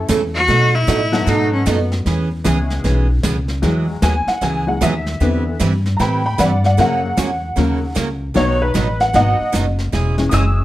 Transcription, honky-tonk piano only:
1.12 1.63 F#3 medium
1.12 1.64 B3 medium
1.12 1.64 D#4 medium
1.12 1.64 F#4 medium
1.12 1.64 A4 medium
2.44 3.04 G#3 medium
2.44 3.04 B3 medium
2.44 3.05 C#4 medium
2.44 3.05 E4 medium
2.44 3.05 G#4 medium
3.62 3.92 E3 medium
3.62 3.92 F#3 medium
3.62 3.92 G#3 medium
4.03 4.27 G#5 loud
4.28 4.42 F#5 medium
4.43 4.67 G#5 medium
4.67 4.80 E3 soft
4.67 4.80 F#3 soft
4.67 4.80 G#3 soft
4.67 4.82 F#5 medium
4.83 5.59 E5 medium
5.21 5.50 D3 medium
5.21 5.50 E3 medium
5.21 5.51 B3 medium
5.97 6.23 G5 medium
5.97 6.00 A#5 medium
6.01 6.25 B5 medium
6.26 6.39 G5 medium
6.26 6.39 B5 medium
6.39 6.63 D5 medium
6.39 6.64 F#5 medium
6.65 6.78 D5 medium
6.65 6.79 F#5 medium
6.78 7.08 C#3 medium
6.78 7.08 F#3 medium
6.78 7.08 A#3 medium
6.78 7.94 F#5 loud
7.57 7.80 C#3 medium
7.57 7.80 F#3 soft
7.57 7.80 A#3 medium
8.35 8.65 D#3 medium
8.35 8.65 F#3 medium
8.35 8.65 B3 medium
8.35 8.61 C#5 loud
8.62 9.00 B4 medium
9.01 9.14 F#5 loud
9.14 9.37 D#3 soft
9.14 9.37 F#3 soft
9.14 9.38 B3 soft
9.14 9.52 D#5 medium
9.14 9.53 F#5 loud
10.17 10.64 E3 medium
10.17 10.64 G#3 medium
10.17 10.64 C#4 medium
10.29 10.32 D#6 medium
10.34 10.58 E6 medium

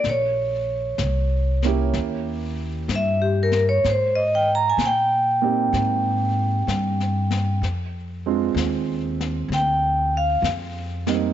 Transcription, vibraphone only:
0.10 1.93 C#5 medium
2.96 3.24 E5 medium
3.22 3.52 G4 soft
3.43 3.63 A#4 medium
3.69 3.84 C#5 medium
3.90 4.18 C5 medium
4.15 4.47 D#5 medium
4.35 4.41 G5 medium
4.55 4.72 A#5 medium
4.70 4.79 G#5 medium
4.86 7.62 G5 medium
9.54 10.13 G5 medium
10.17 10.45 F5 medium

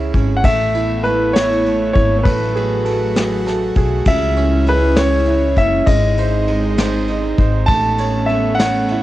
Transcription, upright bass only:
0.14 0.42 G#1 medium
0.44 1.91 A1 medium
1.96 2.24 G#1 medium
2.25 3.72 A1 medium
3.76 4.05 B1 medium
4.06 5.53 C#2 loud
5.57 5.85 F#1 medium
5.87 7.34 G#1 medium
7.38 7.67 G#1 medium
7.69 9.03 A1 medium

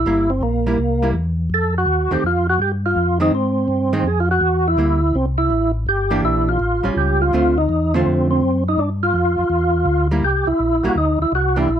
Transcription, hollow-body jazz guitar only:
0.06 0.27 G3 medium
0.06 0.28 A#3 medium
0.06 0.28 E4 medium
0.67 0.77 G3 medium
0.67 0.78 A#3 medium
0.67 0.78 E4 medium
1.03 1.14 G3 medium
1.03 1.14 A#3 medium
1.03 1.14 E4 medium
2.11 2.22 D#3 medium
2.11 2.22 A3 medium
2.11 2.23 C4 medium
3.20 3.31 D#3 medium
3.20 3.31 G#3 medium
3.20 3.32 C4 medium
3.93 4.04 D#3 medium
3.93 4.04 G#3 medium
3.93 4.04 C4 medium
4.78 4.99 G3 soft
4.78 4.99 A#3 medium
4.78 5.00 E4 medium
6.11 6.57 E3 medium
6.11 6.57 A#3 medium
6.11 6.57 D4 medium
6.11 6.58 G4 medium
6.83 7.30 G3 medium
6.83 7.30 C#4 medium
6.83 7.31 F4 medium
7.33 7.54 D3 medium
7.33 7.54 A3 medium
7.33 7.55 C4 medium
7.33 7.55 F4 medium
7.94 8.40 D3 medium
7.94 8.40 A3 medium
7.94 8.40 C4 medium
7.94 8.41 F4 medium
10.11 10.22 G3 medium
10.11 10.23 A#3 medium
10.11 10.23 E4 medium
10.84 10.95 G3 medium
10.84 10.96 A#3 medium
10.84 10.96 E4 medium
11.56 11.68 E3 medium
11.56 11.68 A#3 medium
11.56 11.68 D4 medium
11.56 11.68 G4 medium

